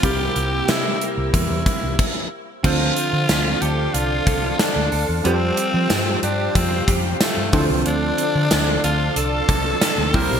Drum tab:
CC |------x-|x-------|--------|--------|
HH |xxxxxx--|-xxxxxxo|xxxxxxxo|xxxxxxxo|
TB |--------|--x---x-|--x---x-|--x---x-|
SD |--o-----|--o---o-|--o---o-|--o---o-|
BD |o---ooo-|o----o--|----oo-o|-----o-o|